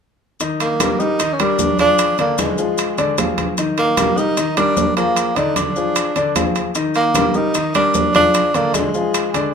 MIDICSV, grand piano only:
0, 0, Header, 1, 2, 480
1, 0, Start_track
1, 0, Key_signature, -3, "major"
1, 0, Tempo, 397088
1, 490, Time_signature, 4, 2, 24, 8
1, 11533, End_track
2, 0, Start_track
2, 0, Title_t, "Grand piano"
2, 0, Program_c, 0, 0
2, 487, Note_on_c, 0, 51, 57
2, 489, Note_on_c, 0, 63, 65
2, 495, Note_on_c, 0, 75, 60
2, 881, Note_off_c, 0, 51, 0
2, 882, Note_off_c, 0, 63, 0
2, 886, Note_off_c, 0, 75, 0
2, 967, Note_on_c, 0, 55, 52
2, 969, Note_on_c, 0, 67, 58
2, 974, Note_on_c, 0, 70, 55
2, 1164, Note_off_c, 0, 55, 0
2, 1165, Note_off_c, 0, 67, 0
2, 1168, Note_off_c, 0, 70, 0
2, 1210, Note_on_c, 0, 55, 49
2, 1213, Note_on_c, 0, 67, 50
2, 1219, Note_on_c, 0, 70, 53
2, 1406, Note_off_c, 0, 55, 0
2, 1408, Note_off_c, 0, 67, 0
2, 1411, Note_off_c, 0, 70, 0
2, 1449, Note_on_c, 0, 51, 58
2, 1454, Note_on_c, 0, 63, 70
2, 1457, Note_on_c, 0, 75, 67
2, 1645, Note_off_c, 0, 51, 0
2, 1648, Note_off_c, 0, 63, 0
2, 1650, Note_off_c, 0, 75, 0
2, 1692, Note_on_c, 0, 55, 69
2, 1695, Note_on_c, 0, 67, 65
2, 1700, Note_on_c, 0, 70, 63
2, 2083, Note_off_c, 0, 55, 0
2, 2085, Note_off_c, 0, 67, 0
2, 2088, Note_off_c, 0, 70, 0
2, 2167, Note_on_c, 0, 53, 56
2, 2171, Note_on_c, 0, 65, 63
2, 2174, Note_on_c, 0, 68, 62
2, 2560, Note_off_c, 0, 53, 0
2, 2562, Note_off_c, 0, 65, 0
2, 2564, Note_off_c, 0, 68, 0
2, 2643, Note_on_c, 0, 50, 70
2, 2647, Note_on_c, 0, 62, 73
2, 2650, Note_on_c, 0, 74, 68
2, 3038, Note_off_c, 0, 50, 0
2, 3040, Note_off_c, 0, 62, 0
2, 3042, Note_off_c, 0, 74, 0
2, 3123, Note_on_c, 0, 53, 60
2, 3125, Note_on_c, 0, 65, 53
2, 3129, Note_on_c, 0, 68, 56
2, 3518, Note_off_c, 0, 53, 0
2, 3519, Note_off_c, 0, 65, 0
2, 3521, Note_off_c, 0, 68, 0
2, 3601, Note_on_c, 0, 50, 73
2, 3605, Note_on_c, 0, 62, 73
2, 3609, Note_on_c, 0, 74, 75
2, 3800, Note_off_c, 0, 50, 0
2, 3802, Note_off_c, 0, 62, 0
2, 3805, Note_off_c, 0, 74, 0
2, 3845, Note_on_c, 0, 53, 55
2, 3849, Note_on_c, 0, 65, 65
2, 3850, Note_on_c, 0, 68, 60
2, 4239, Note_off_c, 0, 53, 0
2, 4241, Note_off_c, 0, 65, 0
2, 4242, Note_off_c, 0, 68, 0
2, 4328, Note_on_c, 0, 51, 62
2, 4331, Note_on_c, 0, 63, 64
2, 4337, Note_on_c, 0, 75, 60
2, 4721, Note_off_c, 0, 51, 0
2, 4723, Note_off_c, 0, 63, 0
2, 4726, Note_off_c, 0, 75, 0
2, 4805, Note_on_c, 0, 55, 52
2, 4808, Note_on_c, 0, 67, 59
2, 4811, Note_on_c, 0, 70, 54
2, 5002, Note_off_c, 0, 55, 0
2, 5004, Note_off_c, 0, 67, 0
2, 5006, Note_off_c, 0, 70, 0
2, 5047, Note_on_c, 0, 55, 49
2, 5051, Note_on_c, 0, 67, 54
2, 5056, Note_on_c, 0, 70, 58
2, 5243, Note_off_c, 0, 55, 0
2, 5246, Note_off_c, 0, 67, 0
2, 5249, Note_off_c, 0, 70, 0
2, 5285, Note_on_c, 0, 51, 63
2, 5292, Note_on_c, 0, 63, 68
2, 5294, Note_on_c, 0, 75, 67
2, 5482, Note_off_c, 0, 51, 0
2, 5486, Note_off_c, 0, 63, 0
2, 5487, Note_off_c, 0, 75, 0
2, 5529, Note_on_c, 0, 55, 66
2, 5531, Note_on_c, 0, 67, 63
2, 5535, Note_on_c, 0, 70, 67
2, 5922, Note_off_c, 0, 55, 0
2, 5923, Note_off_c, 0, 67, 0
2, 5925, Note_off_c, 0, 70, 0
2, 6007, Note_on_c, 0, 53, 69
2, 6012, Note_on_c, 0, 65, 63
2, 6013, Note_on_c, 0, 68, 56
2, 6401, Note_off_c, 0, 53, 0
2, 6404, Note_off_c, 0, 65, 0
2, 6404, Note_off_c, 0, 68, 0
2, 6487, Note_on_c, 0, 50, 73
2, 6491, Note_on_c, 0, 62, 63
2, 6492, Note_on_c, 0, 74, 68
2, 6881, Note_off_c, 0, 50, 0
2, 6883, Note_off_c, 0, 62, 0
2, 6884, Note_off_c, 0, 74, 0
2, 6966, Note_on_c, 0, 53, 58
2, 6969, Note_on_c, 0, 65, 49
2, 6976, Note_on_c, 0, 68, 56
2, 7360, Note_off_c, 0, 53, 0
2, 7362, Note_off_c, 0, 65, 0
2, 7366, Note_off_c, 0, 68, 0
2, 7445, Note_on_c, 0, 50, 72
2, 7448, Note_on_c, 0, 62, 66
2, 7454, Note_on_c, 0, 74, 77
2, 7643, Note_off_c, 0, 50, 0
2, 7645, Note_off_c, 0, 62, 0
2, 7648, Note_off_c, 0, 74, 0
2, 7685, Note_on_c, 0, 53, 56
2, 7686, Note_on_c, 0, 65, 61
2, 7691, Note_on_c, 0, 68, 60
2, 8080, Note_off_c, 0, 53, 0
2, 8081, Note_off_c, 0, 65, 0
2, 8083, Note_off_c, 0, 68, 0
2, 8165, Note_on_c, 0, 51, 67
2, 8168, Note_on_c, 0, 63, 67
2, 8171, Note_on_c, 0, 75, 64
2, 8560, Note_off_c, 0, 51, 0
2, 8562, Note_off_c, 0, 63, 0
2, 8564, Note_off_c, 0, 75, 0
2, 8643, Note_on_c, 0, 55, 59
2, 8646, Note_on_c, 0, 67, 57
2, 8651, Note_on_c, 0, 70, 61
2, 8842, Note_off_c, 0, 55, 0
2, 8844, Note_off_c, 0, 67, 0
2, 8847, Note_off_c, 0, 70, 0
2, 8882, Note_on_c, 0, 55, 57
2, 8883, Note_on_c, 0, 67, 55
2, 8887, Note_on_c, 0, 70, 57
2, 9082, Note_off_c, 0, 55, 0
2, 9082, Note_off_c, 0, 67, 0
2, 9085, Note_off_c, 0, 70, 0
2, 9130, Note_on_c, 0, 51, 69
2, 9130, Note_on_c, 0, 63, 60
2, 9134, Note_on_c, 0, 75, 68
2, 9326, Note_off_c, 0, 51, 0
2, 9326, Note_off_c, 0, 63, 0
2, 9329, Note_off_c, 0, 75, 0
2, 9370, Note_on_c, 0, 55, 65
2, 9374, Note_on_c, 0, 67, 62
2, 9378, Note_on_c, 0, 70, 61
2, 9763, Note_off_c, 0, 55, 0
2, 9766, Note_off_c, 0, 67, 0
2, 9768, Note_off_c, 0, 70, 0
2, 9850, Note_on_c, 0, 53, 60
2, 9851, Note_on_c, 0, 65, 62
2, 9856, Note_on_c, 0, 68, 59
2, 10243, Note_off_c, 0, 53, 0
2, 10244, Note_off_c, 0, 65, 0
2, 10247, Note_off_c, 0, 68, 0
2, 10329, Note_on_c, 0, 50, 75
2, 10333, Note_on_c, 0, 62, 74
2, 10337, Note_on_c, 0, 74, 75
2, 10723, Note_off_c, 0, 50, 0
2, 10725, Note_off_c, 0, 62, 0
2, 10728, Note_off_c, 0, 74, 0
2, 10815, Note_on_c, 0, 53, 57
2, 10818, Note_on_c, 0, 65, 56
2, 10824, Note_on_c, 0, 68, 57
2, 11207, Note_off_c, 0, 53, 0
2, 11209, Note_off_c, 0, 65, 0
2, 11212, Note_off_c, 0, 68, 0
2, 11290, Note_on_c, 0, 50, 70
2, 11295, Note_on_c, 0, 62, 75
2, 11297, Note_on_c, 0, 74, 77
2, 11487, Note_off_c, 0, 50, 0
2, 11490, Note_off_c, 0, 62, 0
2, 11491, Note_off_c, 0, 74, 0
2, 11533, End_track
0, 0, End_of_file